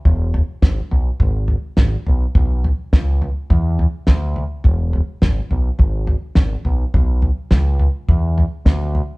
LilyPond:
<<
  \new Staff \with { instrumentName = "Picked electric bass" } { \clef bass \time 4/4 \key e \mixolydian \tempo 4 = 104 e,,4 gis,,8 b,,8 gis,,4 gis,,8 b,,8 | b,,4 cis,4 e,4 d,4 | e,,4 gis,,8 b,,8 gis,,4 gis,,8 b,,8 | b,,4 cis,4 e,4 d,4 | }
  \new DrumStaff \with { instrumentName = "Drums" } \drummode { \time 4/4 <bd tomfh>8 tomfh8 <bd sn tomfh>8 tomfh8 <bd tomfh>8 tomfh8 <bd sn tomfh>8 tomfh8 | <bd tomfh>8 tomfh8 <bd sn tomfh>8 tomfh8 <bd tomfh>8 tomfh8 <bd sn tomfh>8 tomfh8 | <bd tomfh>8 tomfh8 <bd sn tomfh>8 tomfh8 <bd tomfh>8 tomfh8 <bd sn tomfh>8 tomfh8 | <bd tomfh>8 tomfh8 <bd sn tomfh>8 tomfh8 <bd tomfh>8 tomfh8 <bd sn tomfh>8 tomfh8 | }
>>